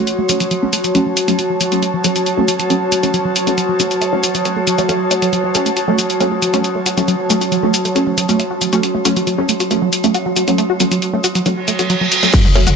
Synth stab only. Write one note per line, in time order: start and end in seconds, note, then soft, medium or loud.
0.00 0.10 F#3 medium
0.00 0.10 A3 medium
0.00 0.10 C#4 loud
0.29 0.43 F#3 medium
0.29 0.43 A3 medium
0.29 0.43 C#4 loud
0.62 0.71 F#3 medium
0.62 0.71 A3 medium
0.62 0.71 C#4 loud
0.95 1.09 F#3 medium
0.95 1.09 A3 medium
0.95 1.09 C#4 loud
1.28 1.36 F#3 medium
1.28 1.36 A3 medium
1.28 1.37 C#4 loud
1.72 1.86 F#3 loud
1.72 1.86 A3 medium
1.72 1.86 C#4 loud
2.04 2.19 F#3 medium
2.04 2.19 A3 medium
2.04 2.19 C#4 loud
2.38 2.46 F#3 medium
2.38 2.46 A3 medium
2.38 2.46 C#4 loud
2.70 2.84 F#3 medium
2.70 2.84 A3 medium
2.70 2.84 C#4 loud
3.03 3.12 F#3 medium
3.03 3.12 A3 medium
3.03 3.12 C#4 loud
3.47 3.61 F#3 medium
3.47 3.61 A3 medium
3.47 3.61 C#4 loud
3.80 3.94 F#3 medium
3.80 3.94 A3 medium
3.80 3.94 C#4 loud
4.13 4.21 F#3 medium
4.13 4.21 A3 medium
4.13 4.21 C#4 loud
4.45 4.59 F#3 medium
4.45 4.59 A3 medium
4.45 4.60 C#4 loud
4.78 4.87 F#3 loud
4.78 4.87 A3 medium
4.78 4.87 C#4 loud
4.89 4.98 F#3 medium
4.89 4.98 A3 medium
4.89 4.98 C#4 loud
5.11 5.20 F#3 medium
5.11 5.20 A3 medium
5.11 5.20 C#4 medium
5.55 5.69 F#3 loud
5.55 5.69 A3 medium
5.55 5.69 C#4 loud
5.88 5.96 F#3 medium
5.88 5.96 A3 medium
5.88 5.96 C#4 loud
6.20 6.35 F#3 medium
6.20 6.35 A3 medium
6.20 6.35 C#4 loud
6.54 6.62 F#3 medium
6.54 6.62 A3 medium
6.54 6.62 C#4 loud
6.97 7.11 F#3 loud
6.97 7.11 A3 medium
6.97 7.11 C#4 loud
7.30 7.44 F#3 medium
7.30 7.44 A3 medium
7.30 7.44 C#4 loud
7.63 7.72 F#3 medium
7.63 7.72 A3 medium
7.63 7.72 C#4 loud
7.96 8.10 F#3 medium
7.96 8.10 A3 medium
7.96 8.10 C#4 loud
8.29 8.37 F#3 medium
8.29 8.37 A3 medium
8.29 8.37 C#4 loud
8.73 8.86 F#3 medium
8.73 8.86 A3 medium
8.73 8.86 C#4 loud
9.05 9.19 F#3 medium
9.05 9.19 A3 medium
9.05 9.19 C#4 loud
9.38 9.47 F#3 medium
9.38 9.47 A3 medium
9.38 9.47 C#4 loud
9.71 9.85 F#3 medium
9.71 9.85 A3 medium
9.71 9.85 C#4 loud
10.04 10.12 F#3 medium
10.04 10.12 A3 medium
10.04 10.12 C#4 loud
10.48 10.62 F#3 medium
10.48 10.62 A3 medium
10.48 10.62 C#4 loud
10.80 10.94 F#3 loud
10.80 10.94 A3 medium
10.80 10.94 C#4 loud
11.13 11.22 F#3 medium
11.13 11.22 A3 medium
11.13 11.22 C#4 loud
11.46 11.60 F#3 medium
11.46 11.60 A3 medium
11.46 11.60 C#4 loud
11.79 11.88 F#3 medium
11.79 11.88 A3 medium
11.79 11.88 C#4 loud
12.23 12.32 F#3 medium
12.23 12.32 A3 medium
12.23 12.32 C#4 loud
12.55 12.70 F#3 loud
12.55 12.70 A3 medium
12.55 12.70 C#4 loud